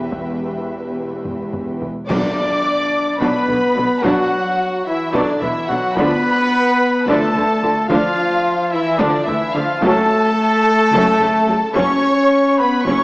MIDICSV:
0, 0, Header, 1, 11, 480
1, 0, Start_track
1, 0, Key_signature, 2, "minor"
1, 0, Tempo, 557103
1, 103, Time_signature, 7, 3, 24, 8
1, 5622, Tempo, 551471
1, 11289, End_track
2, 0, Start_track
2, 0, Title_t, "Violin section"
2, 0, Program_c, 0, 48
2, 0, Note_on_c, 0, 79, 51
2, 1581, Note_off_c, 0, 79, 0
2, 1792, Note_on_c, 0, 86, 109
2, 2719, Note_off_c, 0, 86, 0
2, 2760, Note_on_c, 0, 83, 103
2, 3462, Note_on_c, 0, 78, 103
2, 3475, Note_off_c, 0, 83, 0
2, 4182, Note_off_c, 0, 78, 0
2, 4190, Note_on_c, 0, 76, 100
2, 4418, Note_on_c, 0, 74, 99
2, 4421, Note_off_c, 0, 76, 0
2, 4659, Note_off_c, 0, 74, 0
2, 4660, Note_on_c, 0, 76, 102
2, 4897, Note_on_c, 0, 78, 102
2, 4902, Note_off_c, 0, 76, 0
2, 5129, Note_on_c, 0, 83, 114
2, 5143, Note_off_c, 0, 78, 0
2, 6093, Note_off_c, 0, 83, 0
2, 6095, Note_on_c, 0, 81, 113
2, 6808, Note_on_c, 0, 77, 120
2, 6814, Note_off_c, 0, 81, 0
2, 7517, Note_off_c, 0, 77, 0
2, 7536, Note_on_c, 0, 76, 116
2, 7767, Note_on_c, 0, 74, 111
2, 7770, Note_off_c, 0, 76, 0
2, 8005, Note_on_c, 0, 76, 114
2, 8011, Note_off_c, 0, 74, 0
2, 8239, Note_on_c, 0, 77, 110
2, 8251, Note_off_c, 0, 76, 0
2, 8475, Note_on_c, 0, 81, 127
2, 8489, Note_off_c, 0, 77, 0
2, 10169, Note_off_c, 0, 81, 0
2, 10170, Note_on_c, 0, 85, 122
2, 10882, Note_off_c, 0, 85, 0
2, 10898, Note_on_c, 0, 83, 113
2, 11133, Note_on_c, 0, 85, 119
2, 11135, Note_off_c, 0, 83, 0
2, 11289, Note_off_c, 0, 85, 0
2, 11289, End_track
3, 0, Start_track
3, 0, Title_t, "Trumpet section"
3, 0, Program_c, 1, 61
3, 1801, Note_on_c, 1, 74, 113
3, 2724, Note_off_c, 1, 74, 0
3, 2766, Note_on_c, 1, 71, 102
3, 3464, Note_off_c, 1, 71, 0
3, 3479, Note_on_c, 1, 66, 101
3, 4190, Note_on_c, 1, 64, 80
3, 4191, Note_off_c, 1, 66, 0
3, 4421, Note_off_c, 1, 64, 0
3, 4427, Note_on_c, 1, 62, 89
3, 4657, Note_on_c, 1, 64, 86
3, 4663, Note_off_c, 1, 62, 0
3, 4896, Note_off_c, 1, 64, 0
3, 4899, Note_on_c, 1, 66, 98
3, 5139, Note_off_c, 1, 66, 0
3, 5139, Note_on_c, 1, 71, 125
3, 6098, Note_off_c, 1, 71, 0
3, 6104, Note_on_c, 1, 69, 96
3, 6804, Note_off_c, 1, 69, 0
3, 6810, Note_on_c, 1, 65, 110
3, 7518, Note_off_c, 1, 65, 0
3, 7532, Note_on_c, 1, 64, 95
3, 7773, Note_off_c, 1, 64, 0
3, 7773, Note_on_c, 1, 62, 106
3, 8013, Note_off_c, 1, 62, 0
3, 8016, Note_on_c, 1, 64, 96
3, 8255, Note_on_c, 1, 65, 102
3, 8256, Note_off_c, 1, 64, 0
3, 8492, Note_off_c, 1, 65, 0
3, 8498, Note_on_c, 1, 69, 127
3, 10025, Note_off_c, 1, 69, 0
3, 10173, Note_on_c, 1, 73, 120
3, 10883, Note_off_c, 1, 73, 0
3, 10896, Note_on_c, 1, 71, 96
3, 11139, Note_off_c, 1, 71, 0
3, 11141, Note_on_c, 1, 73, 106
3, 11289, Note_off_c, 1, 73, 0
3, 11289, End_track
4, 0, Start_track
4, 0, Title_t, "Violin section"
4, 0, Program_c, 2, 48
4, 0, Note_on_c, 2, 76, 55
4, 1579, Note_off_c, 2, 76, 0
4, 1777, Note_on_c, 2, 74, 111
4, 2712, Note_off_c, 2, 74, 0
4, 2758, Note_on_c, 2, 71, 94
4, 3468, Note_on_c, 2, 66, 91
4, 3474, Note_off_c, 2, 71, 0
4, 4171, Note_off_c, 2, 66, 0
4, 4202, Note_on_c, 2, 64, 82
4, 4414, Note_on_c, 2, 62, 86
4, 4431, Note_off_c, 2, 64, 0
4, 4657, Note_off_c, 2, 62, 0
4, 4664, Note_on_c, 2, 64, 83
4, 4899, Note_off_c, 2, 64, 0
4, 4911, Note_on_c, 2, 66, 89
4, 5150, Note_off_c, 2, 66, 0
4, 5150, Note_on_c, 2, 71, 111
4, 6101, Note_on_c, 2, 69, 88
4, 6104, Note_off_c, 2, 71, 0
4, 6802, Note_off_c, 2, 69, 0
4, 6831, Note_on_c, 2, 65, 106
4, 7529, Note_off_c, 2, 65, 0
4, 7535, Note_on_c, 2, 64, 101
4, 7775, Note_off_c, 2, 64, 0
4, 7779, Note_on_c, 2, 62, 93
4, 8012, Note_off_c, 2, 62, 0
4, 8014, Note_on_c, 2, 64, 93
4, 8250, Note_off_c, 2, 64, 0
4, 8254, Note_on_c, 2, 65, 94
4, 8483, Note_on_c, 2, 69, 122
4, 8496, Note_off_c, 2, 65, 0
4, 10168, Note_on_c, 2, 73, 108
4, 10172, Note_off_c, 2, 69, 0
4, 10880, Note_off_c, 2, 73, 0
4, 10909, Note_on_c, 2, 71, 98
4, 11129, Note_on_c, 2, 73, 93
4, 11145, Note_off_c, 2, 71, 0
4, 11289, Note_off_c, 2, 73, 0
4, 11289, End_track
5, 0, Start_track
5, 0, Title_t, "French horn section"
5, 0, Program_c, 3, 60
5, 0, Note_on_c, 3, 59, 60
5, 0, Note_on_c, 3, 67, 52
5, 1519, Note_off_c, 3, 59, 0
5, 1521, Note_off_c, 3, 67, 0
5, 1802, Note_on_c, 3, 62, 99
5, 2724, Note_off_c, 3, 62, 0
5, 2758, Note_on_c, 3, 59, 98
5, 3474, Note_off_c, 3, 59, 0
5, 3475, Note_on_c, 3, 54, 88
5, 4181, Note_on_c, 3, 52, 93
5, 4188, Note_off_c, 3, 54, 0
5, 4416, Note_off_c, 3, 52, 0
5, 4427, Note_on_c, 3, 50, 85
5, 4664, Note_off_c, 3, 50, 0
5, 4684, Note_on_c, 3, 52, 86
5, 4905, Note_on_c, 3, 54, 90
5, 4914, Note_off_c, 3, 52, 0
5, 5147, Note_off_c, 3, 54, 0
5, 5153, Note_on_c, 3, 59, 114
5, 6106, Note_off_c, 3, 59, 0
5, 6111, Note_on_c, 3, 57, 94
5, 6814, Note_on_c, 3, 53, 109
5, 6822, Note_off_c, 3, 57, 0
5, 7520, Note_off_c, 3, 53, 0
5, 7544, Note_on_c, 3, 52, 111
5, 7776, Note_on_c, 3, 50, 100
5, 7779, Note_off_c, 3, 52, 0
5, 8015, Note_off_c, 3, 50, 0
5, 8023, Note_on_c, 3, 52, 94
5, 8255, Note_off_c, 3, 52, 0
5, 8256, Note_on_c, 3, 53, 97
5, 8497, Note_off_c, 3, 53, 0
5, 8501, Note_on_c, 3, 57, 126
5, 10041, Note_off_c, 3, 57, 0
5, 10189, Note_on_c, 3, 61, 111
5, 10891, Note_off_c, 3, 61, 0
5, 10911, Note_on_c, 3, 59, 108
5, 11137, Note_on_c, 3, 61, 109
5, 11147, Note_off_c, 3, 59, 0
5, 11289, Note_off_c, 3, 61, 0
5, 11289, End_track
6, 0, Start_track
6, 0, Title_t, "Viola section"
6, 0, Program_c, 4, 48
6, 0, Note_on_c, 4, 71, 57
6, 1583, Note_off_c, 4, 71, 0
6, 1808, Note_on_c, 4, 54, 78
6, 1808, Note_on_c, 4, 62, 85
6, 2026, Note_off_c, 4, 54, 0
6, 2026, Note_off_c, 4, 62, 0
6, 2769, Note_on_c, 4, 54, 74
6, 2769, Note_on_c, 4, 62, 82
6, 2985, Note_off_c, 4, 54, 0
6, 2985, Note_off_c, 4, 62, 0
6, 3008, Note_on_c, 4, 59, 70
6, 3011, Note_on_c, 4, 50, 67
6, 3077, Note_off_c, 4, 59, 0
6, 3080, Note_off_c, 4, 50, 0
6, 3242, Note_on_c, 4, 54, 67
6, 3243, Note_on_c, 4, 50, 78
6, 3311, Note_off_c, 4, 54, 0
6, 3312, Note_off_c, 4, 50, 0
6, 3476, Note_on_c, 4, 54, 89
6, 3479, Note_on_c, 4, 62, 90
6, 3697, Note_off_c, 4, 54, 0
6, 3698, Note_off_c, 4, 62, 0
6, 4423, Note_on_c, 4, 54, 87
6, 4423, Note_on_c, 4, 62, 98
6, 4645, Note_off_c, 4, 54, 0
6, 4645, Note_off_c, 4, 62, 0
6, 4671, Note_on_c, 4, 59, 64
6, 4673, Note_on_c, 4, 50, 69
6, 4740, Note_off_c, 4, 59, 0
6, 4742, Note_off_c, 4, 50, 0
6, 4909, Note_on_c, 4, 54, 76
6, 4912, Note_on_c, 4, 50, 68
6, 4978, Note_off_c, 4, 54, 0
6, 4980, Note_off_c, 4, 50, 0
6, 5155, Note_on_c, 4, 62, 92
6, 5159, Note_on_c, 4, 53, 92
6, 5374, Note_off_c, 4, 62, 0
6, 5376, Note_off_c, 4, 53, 0
6, 6100, Note_on_c, 4, 62, 96
6, 6101, Note_on_c, 4, 53, 85
6, 6322, Note_off_c, 4, 62, 0
6, 6323, Note_off_c, 4, 53, 0
6, 6334, Note_on_c, 4, 57, 80
6, 6338, Note_on_c, 4, 50, 89
6, 6403, Note_off_c, 4, 57, 0
6, 6408, Note_off_c, 4, 50, 0
6, 6585, Note_on_c, 4, 50, 82
6, 6585, Note_on_c, 4, 53, 77
6, 6654, Note_off_c, 4, 50, 0
6, 6655, Note_off_c, 4, 53, 0
6, 6815, Note_on_c, 4, 62, 93
6, 6819, Note_on_c, 4, 53, 94
6, 7039, Note_off_c, 4, 62, 0
6, 7041, Note_off_c, 4, 53, 0
6, 7772, Note_on_c, 4, 62, 110
6, 7778, Note_on_c, 4, 53, 97
6, 7996, Note_off_c, 4, 62, 0
6, 7999, Note_off_c, 4, 53, 0
6, 8008, Note_on_c, 4, 50, 83
6, 8011, Note_on_c, 4, 57, 86
6, 8077, Note_off_c, 4, 50, 0
6, 8080, Note_off_c, 4, 57, 0
6, 8256, Note_on_c, 4, 53, 88
6, 8262, Note_on_c, 4, 50, 85
6, 8326, Note_off_c, 4, 53, 0
6, 8331, Note_off_c, 4, 50, 0
6, 8506, Note_on_c, 4, 54, 104
6, 8506, Note_on_c, 4, 61, 88
6, 8725, Note_off_c, 4, 54, 0
6, 8726, Note_off_c, 4, 61, 0
6, 9459, Note_on_c, 4, 54, 94
6, 9462, Note_on_c, 4, 61, 92
6, 9682, Note_off_c, 4, 54, 0
6, 9684, Note_off_c, 4, 61, 0
6, 9703, Note_on_c, 4, 49, 79
6, 9703, Note_on_c, 4, 57, 74
6, 9773, Note_off_c, 4, 49, 0
6, 9773, Note_off_c, 4, 57, 0
6, 9937, Note_on_c, 4, 54, 80
6, 9939, Note_on_c, 4, 49, 83
6, 10007, Note_off_c, 4, 54, 0
6, 10009, Note_off_c, 4, 49, 0
6, 10180, Note_on_c, 4, 54, 93
6, 10181, Note_on_c, 4, 61, 107
6, 10403, Note_off_c, 4, 54, 0
6, 10403, Note_off_c, 4, 61, 0
6, 11135, Note_on_c, 4, 54, 77
6, 11138, Note_on_c, 4, 61, 88
6, 11289, Note_off_c, 4, 54, 0
6, 11289, Note_off_c, 4, 61, 0
6, 11289, End_track
7, 0, Start_track
7, 0, Title_t, "Cello section"
7, 0, Program_c, 5, 48
7, 0, Note_on_c, 5, 40, 54
7, 1582, Note_off_c, 5, 40, 0
7, 1807, Note_on_c, 5, 47, 80
7, 1876, Note_off_c, 5, 47, 0
7, 2764, Note_on_c, 5, 47, 101
7, 2833, Note_off_c, 5, 47, 0
7, 3005, Note_on_c, 5, 47, 57
7, 3074, Note_off_c, 5, 47, 0
7, 3240, Note_on_c, 5, 47, 71
7, 3309, Note_off_c, 5, 47, 0
7, 3481, Note_on_c, 5, 47, 92
7, 3549, Note_off_c, 5, 47, 0
7, 4423, Note_on_c, 5, 47, 101
7, 4492, Note_off_c, 5, 47, 0
7, 4665, Note_on_c, 5, 47, 66
7, 4734, Note_off_c, 5, 47, 0
7, 4911, Note_on_c, 5, 47, 73
7, 4980, Note_off_c, 5, 47, 0
7, 5157, Note_on_c, 5, 50, 96
7, 5226, Note_off_c, 5, 50, 0
7, 6098, Note_on_c, 5, 50, 97
7, 6167, Note_off_c, 5, 50, 0
7, 6342, Note_on_c, 5, 50, 68
7, 6411, Note_off_c, 5, 50, 0
7, 6585, Note_on_c, 5, 50, 72
7, 6655, Note_off_c, 5, 50, 0
7, 6818, Note_on_c, 5, 50, 97
7, 6888, Note_off_c, 5, 50, 0
7, 7774, Note_on_c, 5, 50, 118
7, 7844, Note_off_c, 5, 50, 0
7, 8014, Note_on_c, 5, 50, 74
7, 8084, Note_off_c, 5, 50, 0
7, 8245, Note_on_c, 5, 50, 78
7, 8314, Note_off_c, 5, 50, 0
7, 8494, Note_on_c, 5, 42, 104
7, 8564, Note_off_c, 5, 42, 0
7, 9462, Note_on_c, 5, 42, 115
7, 9532, Note_off_c, 5, 42, 0
7, 9689, Note_on_c, 5, 42, 66
7, 9758, Note_off_c, 5, 42, 0
7, 9931, Note_on_c, 5, 42, 74
7, 10001, Note_off_c, 5, 42, 0
7, 10177, Note_on_c, 5, 42, 99
7, 10246, Note_off_c, 5, 42, 0
7, 11136, Note_on_c, 5, 42, 93
7, 11206, Note_off_c, 5, 42, 0
7, 11289, End_track
8, 0, Start_track
8, 0, Title_t, "Timpani"
8, 0, Program_c, 6, 47
8, 1808, Note_on_c, 6, 47, 103
8, 2487, Note_off_c, 6, 47, 0
8, 11289, End_track
9, 0, Start_track
9, 0, Title_t, "Double bass section"
9, 0, Program_c, 7, 48
9, 0, Note_on_c, 7, 28, 52
9, 1580, Note_off_c, 7, 28, 0
9, 1792, Note_on_c, 7, 35, 89
9, 1861, Note_off_c, 7, 35, 0
9, 2754, Note_on_c, 7, 35, 91
9, 2823, Note_off_c, 7, 35, 0
9, 3003, Note_on_c, 7, 35, 62
9, 3072, Note_off_c, 7, 35, 0
9, 3243, Note_on_c, 7, 35, 62
9, 3312, Note_off_c, 7, 35, 0
9, 3480, Note_on_c, 7, 35, 94
9, 3549, Note_off_c, 7, 35, 0
9, 4427, Note_on_c, 7, 35, 90
9, 4496, Note_off_c, 7, 35, 0
9, 4662, Note_on_c, 7, 35, 64
9, 4731, Note_off_c, 7, 35, 0
9, 4897, Note_on_c, 7, 35, 66
9, 4966, Note_off_c, 7, 35, 0
9, 5136, Note_on_c, 7, 38, 97
9, 5205, Note_off_c, 7, 38, 0
9, 6099, Note_on_c, 7, 38, 97
9, 6169, Note_off_c, 7, 38, 0
9, 6334, Note_on_c, 7, 38, 72
9, 6403, Note_off_c, 7, 38, 0
9, 6576, Note_on_c, 7, 38, 74
9, 6645, Note_off_c, 7, 38, 0
9, 6808, Note_on_c, 7, 38, 106
9, 6877, Note_off_c, 7, 38, 0
9, 7777, Note_on_c, 7, 38, 108
9, 7846, Note_off_c, 7, 38, 0
9, 8019, Note_on_c, 7, 38, 75
9, 8089, Note_off_c, 7, 38, 0
9, 8255, Note_on_c, 7, 38, 73
9, 8325, Note_off_c, 7, 38, 0
9, 8498, Note_on_c, 7, 30, 113
9, 8568, Note_off_c, 7, 30, 0
9, 9452, Note_on_c, 7, 30, 109
9, 9522, Note_off_c, 7, 30, 0
9, 9695, Note_on_c, 7, 30, 71
9, 9765, Note_off_c, 7, 30, 0
9, 9937, Note_on_c, 7, 30, 75
9, 10006, Note_off_c, 7, 30, 0
9, 10169, Note_on_c, 7, 30, 98
9, 10239, Note_off_c, 7, 30, 0
9, 11131, Note_on_c, 7, 30, 98
9, 11201, Note_off_c, 7, 30, 0
9, 11289, End_track
10, 0, Start_track
10, 0, Title_t, "Taiko and cinematic ensemble drums"
10, 100, Note_on_c, 9, 41, 74
10, 186, Note_off_c, 9, 41, 0
10, 1080, Note_on_c, 9, 45, 64
10, 1167, Note_off_c, 9, 45, 0
10, 1321, Note_on_c, 9, 45, 72
10, 1407, Note_off_c, 9, 45, 0
10, 1566, Note_on_c, 9, 43, 75
10, 1653, Note_off_c, 9, 43, 0
10, 1808, Note_on_c, 9, 41, 106
10, 1895, Note_off_c, 9, 41, 0
10, 2765, Note_on_c, 9, 41, 89
10, 2851, Note_off_c, 9, 41, 0
10, 3001, Note_on_c, 9, 43, 56
10, 3087, Note_off_c, 9, 43, 0
10, 3479, Note_on_c, 9, 41, 101
10, 3565, Note_off_c, 9, 41, 0
10, 4428, Note_on_c, 9, 41, 86
10, 4515, Note_off_c, 9, 41, 0
10, 4668, Note_on_c, 9, 43, 59
10, 4754, Note_off_c, 9, 43, 0
10, 5146, Note_on_c, 9, 41, 106
10, 5232, Note_off_c, 9, 41, 0
10, 6106, Note_on_c, 9, 41, 87
10, 6194, Note_off_c, 9, 41, 0
10, 6343, Note_on_c, 9, 43, 53
10, 6430, Note_off_c, 9, 43, 0
10, 6818, Note_on_c, 9, 41, 104
10, 6906, Note_off_c, 9, 41, 0
10, 7772, Note_on_c, 9, 41, 88
10, 7859, Note_off_c, 9, 41, 0
10, 8014, Note_on_c, 9, 43, 53
10, 8101, Note_off_c, 9, 43, 0
10, 8489, Note_on_c, 9, 41, 108
10, 8576, Note_off_c, 9, 41, 0
10, 9461, Note_on_c, 9, 41, 86
10, 9548, Note_off_c, 9, 41, 0
10, 9703, Note_on_c, 9, 43, 55
10, 9790, Note_off_c, 9, 43, 0
10, 10181, Note_on_c, 9, 41, 107
10, 10268, Note_off_c, 9, 41, 0
10, 11142, Note_on_c, 9, 41, 85
10, 11229, Note_off_c, 9, 41, 0
10, 11289, End_track
11, 0, Start_track
11, 0, Title_t, "Drums"
11, 1800, Note_on_c, 9, 35, 78
11, 1800, Note_on_c, 9, 49, 76
11, 1887, Note_off_c, 9, 35, 0
11, 1887, Note_off_c, 9, 49, 0
11, 11289, End_track
0, 0, End_of_file